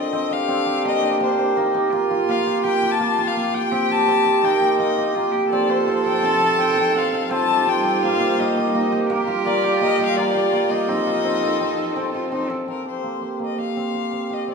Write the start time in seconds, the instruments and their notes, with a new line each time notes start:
Already playing: hammered dulcimer C4 D4 F4 G4 A4, violin D#5
0.12 cello C4, hammered dulcimer C4
0.31 hammered dulcimer G4, violin F5
0.48 hammered dulcimer C4, cello D4
0.66 hammered dulcimer G4
0.85 hammered dulcimer A#3, violin D#5
1.03 hammered dulcimer G4
1.20 hammered dulcimer A#3, violin C5
1.39 hammered dulcimer G4
1.56 hammered dulcimer A#3, cello D#4
1.74 hammered dulcimer G4
1.92 hammered dulcimer A#3, cello F4
2.11 hammered dulcimer F4
2.29 hammered dulcimer A#3, violin F5
2.46 hammered dulcimer G4
2.63 hammered dulcimer A#3, cello G4, violin G5
2.83 hammered dulcimer G4
2.91 violin A5
2.99 hammered dulcimer A#3, cello F4
3.18 hammered dulcimer G4
3.27 violin F5
3.36 hammered dulcimer A#3
3.54 hammered dulcimer G4, violin G5
3.71 hammered dulcimer C4, cello G4
3.89 hammered dulcimer G4, violin A5
4.08 hammered dulcimer C4
4.25 hammered dulcimer G4
4.43 hammered dulcimer A#3, cello D#4, violin G5
4.61 hammered dulcimer G4
4.79 hammered dulcimer A#3, violin D#5
4.98 hammered dulcimer G4
5.14 hammered dulcimer A#3, cello F4
5.32 cello G4, hammered dulcimer G4
5.50 string section F3 D#4 A4, hammered dulcimer C4, cello A4, violin D5
5.70 hammered dulcimer F4, violin C5
5.87 hammered dulcimer C4
6.05 hammered dulcimer A4, violin G5
6.23 hammered dulcimer C4, violin A5
6.41 hammered dulcimer A4
6.58 hammered dulcimer C4, violin G5
6.77 hammered dulcimer A4
6.95 hammered dulcimer C4, violin F5
7.13 hammered dulcimer A4
7.30 string section G3 C5, hammered dulcimer C4, cello F4, violin A5
7.48 hammered dulcimer G4
7.67 hammered dulcimer C4, violin G5
7.85 hammered dulcimer G4
8.03 hammered dulcimer A#3, violin F5
8.20 hammered dulcimer G4
8.38 hammered dulcimer A#3, violin D#5
8.57 hammered dulcimer G4
8.74 hammered dulcimer A#3, cello D#4
8.92 hammered dulcimer G4
9.10 string section G3 F4 A#4, hammered dulcimer A#3, cello G4
9.27 hammered dulcimer F4
9.45 hammered dulcimer A#3, violin D5
9.64 hammered dulcimer G4
9.81 hammered dulcimer A#3, violin D#5
9.99 hammered dulcimer G4
10.05 violin F5
10.16 hammered dulcimer A#3, cello F4, violin D5
10.35 hammered dulcimer G4
10.53 hammered dulcimer A#3
10.70 hammered dulcimer G4, violin D#5
10.88 string section F3 D#4 A4, hammered dulcimer C4, cello D#4
11.06 hammered dulcimer F4
11.24 hammered dulcimer C4
11.42 hammered dulcimer A4
11.60 hammered dulcimer C4
11.78 hammered dulcimer A4
11.95 cello C4, hammered dulcimer C4
12.14 cello F4, hammered dulcimer A4
12.32 hammered dulcimer C4, cello D#4
12.50 cello C4, hammered dulcimer A4
12.68 hammered dulcimer C4, violin A#4
12.86 hammered dulcimer G4, violin C5
13.04 hammered dulcimer A#3
13.21 hammered dulcimer G4
13.39 hammered dulcimer A#3
13.44 violin D#5
13.58 hammered dulcimer G4, violin F5
13.77 hammered dulcimer C4
13.94 hammered dulcimer G4
14.13 hammered dulcimer C4
14.30 hammered dulcimer G4, violin D#5
14.48 hammered dulcimer C4, violin D5